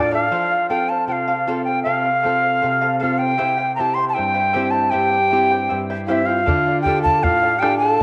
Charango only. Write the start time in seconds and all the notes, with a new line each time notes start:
Already playing: A4 D5 F5
0.11 A4 D5 F5
0.32 A4 C5 F5
0.51 C5 F5
0.70 A4 C5 F5
0.89 C5 F5
1.08 A4 C5 F5
1.28 A4 C5 F5
1.48 A4 C5 F5
1.67 C5 F5
1.85 A4 C5 F5
2.04 C5 F5
2.22 A4 C5 F5
2.42 C5 F5
2.61 A4 C5 F5
2.82 A4 C5 F5
2.99 A4 C5 F5
3.19 C5 F5
3.38 E4 G4 C5 E5 G5
3.58 E4 C5 G5
3.77 E4 C5 E5 G5
3.96 E4 C5 G5
4.14 E4 C5 E5 G5
4.34 E4 G4 C5 E5 G5
4.53 E4 G4 C5 E5 G5
4.72 E4 C5 G5
4.91 E4 G4 C5 E5 G5
5.10 E4 C5 G5
5.30 E4 C5 E5 G5
5.50 E4 C5 G5
5.69 E4 C5 E5 G5
5.90 E4 G4 C5 E5 G5
6.08 E4 G4 C5 E5 G5
6.29 E4 C5 G5
6.46 A4 D5 F5
6.66 D5 F5
6.85 A4 D5 F5
7.04 D5 F5
7.22 A4 D5 F5
7.42 A4 D5 F5
7.61 A4 D5 F5
7.81 D5 F5